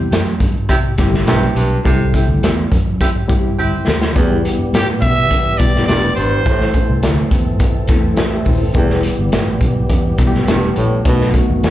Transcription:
Already playing: G3 C4 E4 G4
0.11 F#2 C4 E4 G4, snare, closed hi-hat
0.40 G2, kick, closed hi-hat
0.69 C3 C4 E4 G4, kick, closed hi-hat
0.98 G1 G3 C4 E4 G4, kick, snare, closed hi-hat
1.14 snare
1.26 B1 G2 C4 E4 G4, snare, closed hi-hat
1.55 B1 G2, closed hi-hat
1.84 C2 C3 G3 C4 E4 A4, kick, closed hi-hat
2.14 C4 E4 G4, kick, closed hi-hat
2.28 D2
2.43 E2 C4 E4 G4, snare, closed hi-hat
2.72 F#2, kick, closed hi-hat
3.01 C4 E4 G4, kick, closed hi-hat
3.28 G2 G3 C4 E4 G4, kick, closed hi-hat
3.58 D2 C4 E4 G4
3.87 D#2, snare
4.02 snare
4.15 E2 E3 G3 B3 E4 F#4 G4, kick, closed hi-hat
4.24 G4
4.45 closed hi-hat
4.59 G2
4.73 A2 G4, snare, closed hi-hat
5.02 B2 E5, kick, closed hi-hat
5.31 E3, kick, closed hi-hat
5.58 B1 G3 B3 E4 F#4 D5, kick, closed hi-hat
5.67 G4
5.76 snare
5.87 E1 G2 D5, snare, closed hi-hat
6.15 G#1 G2 C5, closed hi-hat
6.45 A1 A2 A3 C4 E4 A4, kick, closed hi-hat
6.61 snare
6.73 kick, closed hi-hat
6.90 C2
7.03 D2, snare, closed hi-hat
7.31 E2, kick, closed hi-hat
7.60 A2, kick, closed hi-hat
7.87 E2 A3 B3 E4 A4, kick, snare, closed hi-hat
7.96 C4
8.17 A1, snare, closed hi-hat
8.33 G4 E5
8.45 D#1 E4 C5, kick, open hi-hat
8.62 C4 A4
8.73 E1 E2 G3 B3 E4 G4, kick, closed hi-hat
8.90 snare
9.03 closed hi-hat
9.19 G1
9.32 A1, snare, closed hi-hat
9.60 B1, kick, closed hi-hat
9.89 E2, kick, closed hi-hat
10.18 B1 G3 B3 E4 F#4, kick, snare, closed hi-hat
10.27 G4
10.34 snare
10.47 E1 G2, snare, closed hi-hat
10.76 A#1 A2, closed hi-hat
11.04 B1 B2 D#3 A3 B3 D#4 F#4, kick, closed hi-hat
11.21 snare
11.34 kick, closed hi-hat
11.50 D#2
11.64 E2, snare, closed hi-hat

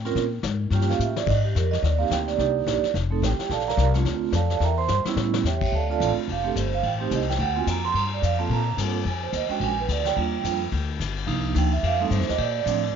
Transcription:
Already playing: A2
0.05 C4 C#4 F4 A#4, snare
0.15 A#2, brush sweep, kick, snare
0.43 G#2, kick, snare, hi-hat pedal
0.71 G2 A#3 C#4 F4 G4, brush sweep, kick, snare
0.75 G5
0.81 snare
0.90 F5, snare
0.99 A2 E5, hi-hat pedal
1.16 D5, snare
1.27 G#2 D#5, brush sweep, kick, snare, crash
1.45 G4
1.55 F2 A#4, kick, snare, hi-hat pedal
1.71 D#5, snare
1.82 D#2 D5, brush sweep, kick, snare
1.98 A#3 C4 D#4 G4 F5
2.10 D2 G5, kick, snare, hi-hat pedal
2.28 D5, snare
2.37 C2 A#3 D4 D#4 G4, brush sweep, kick, snare
2.66 A#1, kick, snare, hi-hat pedal
2.83 muted upright bass stroke, snare
2.94 F1, brush sweep, kick, snare
3.11 A3 C4 D#4 A4
3.22 A1 G4 G5, kick, snare, hi-hat pedal
3.39 muted upright bass stroke, snare
3.49 A#1 A4 D5 F5 A5, brush sweep, kick, snare
3.60 snare
3.68 A#4 D5 F5 A#5, snare
3.77 C2, kick, snare, hi-hat pedal
3.94 A3 C4 D4 F4, snare
4.05 D2, brush sweep, kick, snare
4.32 F2 A4 D5 F5 A5, kick, snare, hi-hat pedal
4.50 snare
4.60 E2 A#4 E5 A#5, brush sweep, kick, snare
4.64 G5
4.78 C5 C6
4.88 G2, snare, hi-hat pedal
5.05 G3 B3 C#4 E4, muted upright bass stroke, snare
5.16 A2, snare
5.34 snare
5.43 E2 G4 E5 G5, snare, hi-hat pedal
5.48 C#5
5.61 kick, crash
5.72 D2 A4 D5 F5 A5, kick
5.89 A3 C4 D4 F4 A4 D5 F5 A5
6.00 A1, kick, hi-hat pedal, ride
6.16 muted upright bass stroke, ride
6.28 F1, kick, ride
6.32 F5
6.43 A3 C4 D4 G4 A4
6.56 G1 C5, kick, hi-hat pedal, ride
6.72 F5, ride
6.83 A1 G5, kick, ride
6.99 A3 C4 D#4 G4 C5
7.11 C2, kick, hi-hat pedal, ride
7.15 D#5
7.21 snare
7.28 G5, snare, ride
7.39 D2 F#5, kick, ride
7.55 A#3 C4 F4 F#4 G#5
7.67 F2 A#5, kick, hi-hat pedal, ride
7.84 C6, ride
7.94 G2 A#5, kick, ride
8.14 D5
8.22 F2 F5, kick, hi-hat pedal, ride
8.39 A#3 C4 F4 A4 A5, ride
8.49 A#2 A#5, kick, ride
8.77 G2 A#3 C4 F4 A4, kick, hi-hat pedal, ride
9.05 F2 G#5, kick, ride
9.23 C5
9.33 D#2 D#5, kick, hi-hat pedal, ride
9.49 G#3 C#4 D4 F#4 G5, muted upright bass stroke, ride
9.60 A#1 G#5, kick, ride
9.80 B4
9.88 D2, kick, hi-hat pedal, ride
9.92 D5
10.05 G5, snare, ride
10.16 D#2 G3 A#3 D4 F4, kick, ride
10.44 F2 G3 A#3 D4 F4, kick, hi-hat pedal, ride
10.72 D2, kick, ride
10.99 G1, kick, hi-hat pedal, ride
11.16 ride
11.26 C2 F3 A#3 D4 D#4, kick, ride
11.55 D2 F3 A#3 D4 D#4 G5, kick, hi-hat pedal, ride
11.72 E5, ride
11.83 F2 F5, kick, ride
11.99 G3 A3 C4 D#4 A4
12.10 G2 C5, kick, hi-hat pedal, ride
12.20 F2, snare
12.28 D#2 D#5, snare, ride
12.38 A#2 D5, kick, ride
12.65 A2 F3 A3 C4 D4, kick, hi-hat pedal, ride
12.83 ride

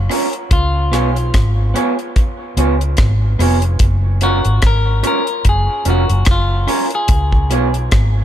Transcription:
Already playing: F4
0.10 C#4 F4 A#4 C#5, open hi-hat
0.33 closed hi-hat
0.51 C#2 F4, kick, closed hi-hat
0.92 B1 B3 F4 G#4 C#5, cross-stick, closed hi-hat
1.16 closed hi-hat
1.34 G#1, kick, cross-stick, closed hi-hat
1.74 B3 F4 G#4 C#5, closed hi-hat
1.99 closed hi-hat
2.16 kick, closed hi-hat
2.57 C#2 B3 F4 G#4 C#5, closed hi-hat
2.81 closed hi-hat
2.97 G#1, kick, cross-stick, closed hi-hat
3.39 F1 B3 F4 G#4 C#5, open hi-hat
3.62 closed hi-hat
3.79 F#1, kick, closed hi-hat
4.21 C#4 F4 F#4 A#4 C#5, closed hi-hat
4.45 G#1, closed hi-hat
4.62 G#1, kick, cross-stick, closed hi-hat
4.67 A#4
5.03 C#4 F4 A#4 C#5, closed hi-hat
5.07 A#4
5.27 closed hi-hat
5.45 F#1, kick, closed hi-hat
5.49 G#4
5.85 F1 C#4 F4 A#4 C#5, closed hi-hat
5.90 F#4
6.10 F#1, closed hi-hat
6.25 F#1, kick, cross-stick, closed hi-hat
6.31 F4
6.67 C#4 F4 A#4 C#5, open hi-hat
6.90 closed hi-hat
6.95 G#4
7.08 C#2, kick, closed hi-hat
7.32 kick
7.50 B1 B3 F4 G#4 C#5, closed hi-hat
7.74 closed hi-hat
7.91 G#1, kick, cross-stick, closed hi-hat

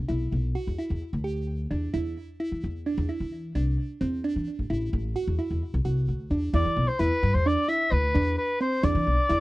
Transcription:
0.09 B1 E4
0.32 B1
0.55 F#4
0.67 E2
0.79 E4
0.90 E2
1.13 D2
1.24 G4
1.71 E2 D4
1.94 E2 E4
2.40 E4
2.52 E3
2.64 E2
2.86 D4
2.98 E2
3.09 E4
3.20 E3
3.55 C2 D4
4.01 E2 C4
4.24 D4
4.36 E3
4.59 A1
4.70 A1 E4
4.93 A1
5.16 F#4
5.27 E2
5.39 E4
5.51 E2
5.74 C2
5.85 C2 F#4
6.08 D2
6.30 E2 D4
6.54 E2 E4 D5
6.65 E3
6.76 B1
6.88 C5
6.99 E2 E4 B4
7.23 G2
7.34 E2 C5
7.46 D4 D5
7.68 E4 E5
7.92 D2 B4
8.15 E2 D4
8.38 B4
8.61 C4 C5
8.83 E2 D4 D5
8.95 E3
9.07 B1
9.29 E2 E4

